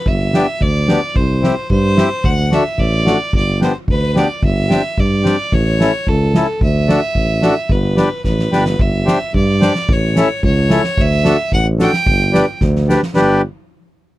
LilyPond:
<<
  \new Staff \with { instrumentName = "Fiddle" } { \time 2/4 \key g \major \tempo 4 = 110 e''4 d''4 | c''4 c''4 | fis''8 e''8 d''4 | d''8 c''8 b'8 d''8 |
e''4 d''4 | cis''4 a'4 | e''2 | b'4 b'4 |
e''4 d''4 | cis''4 cis''4 | e''4 fis''8 g''8~ | g''4 r4 |
r2 | }
  \new Staff \with { instrumentName = "Accordion" } { \time 2/4 \key g \major r8 <b d' g'>8 r8 <b d' g'>8 | r8 <c' e' g'>8 r8 <c' e' g'>8 | r8 <a d' fis'>8 r8 <a d' fis'>8 | r8 <b d' g'>8 r8 <b d' g'>8 |
r8 <c' d' g'>8 r8 <c' d' g'>8 | r8 <cis' e' a'>8 r8 <cis' e' a'>8 | r8 <d' fis' a'>8 r8 <d' fis' a'>8 | r8 <d' g' b'>8 r8 <d' g' b'>8 |
r8 <d' g' c''>8 r8 <d' g' c''>8 | r8 <cis' e' a'>8 r8 <cis' e' a'>8 | r8 <d' fis' a'>8 r8 <d' fis' a'>8 | r8 <d' g' b'>8 r8 <d' g' b'>8 |
<d' g' b'>8 r4. | }
  \new Staff \with { instrumentName = "Tuba" } { \clef bass \time 2/4 \key g \major g,,4 d,4 | c,4 g,4 | d,4 a,,4 | g,,4 d,4 |
g,,4 g,4 | a,,4 cis,4 | d,4 a,,4 | g,,4 a,,8 g,,8 |
g,,4 g,4 | a,,4 cis,4 | d,4 a,,4 | g,,4 d,4 |
g,,8 r4. | }
  \new DrumStaff \with { instrumentName = "Drums" } \drummode { \time 2/4 bd8 sn8 bd8 sn8 | bd8 sn8 bd8 sn8 | bd8 sn16 sn16 bd8 sn8 | bd8 sn8 bd8 sn8 |
bd8 sn8 bd8 sn8 | bd8 sn8 bd8 sn8 | bd8 sn16 sn16 bd8 sn8 | bd8 sn8 <bd sn>16 sn16 sn16 sn16 |
bd8 <hhp sn>8 bd8 <hhp sn>16 sn16 | bd8 <hhp sn>8 bd8 <hhp sn>16 sn16 | bd16 sn16 <hhp sn>8 bd8 <hhp sn>16 sn16 | bd8 <hhp sn>8 <bd sn>16 sn16 <hhp sn>16 sn16 |
sn4 r4 | }
>>